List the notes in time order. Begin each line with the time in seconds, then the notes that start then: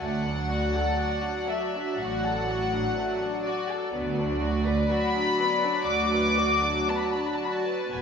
0.01 D2 F#3 A3 F#4 D5 F#5
0.25 D4
0.49 F#4
0.75 A4
1.00 F#4
1.24 D4
1.49 A3 E5
1.75 D4
1.99 A1 A2 F#4 F#5
2.25 A4
2.50 F#4
2.74 D4
2.98 A3
3.23 D4
3.45 F#4 D5
3.70 A4
3.94 D2 F#3 B3 F#4 D5
4.19 D4
4.43 F#4
4.66 B4
4.90 F#4 B5
5.14 D4
5.39 B3
5.63 D4
5.87 D2 F#4 D6
6.12 B4
6.36 F#4
6.62 D4
6.87 B3 A5
6.96 B5
7.04 A5
7.12 D4 B5
7.19 A5
7.27 B5
7.34 A5
7.40 F#4 B5
7.52 A5
7.65 B4
7.92 E1 E2 B3 B4 G#5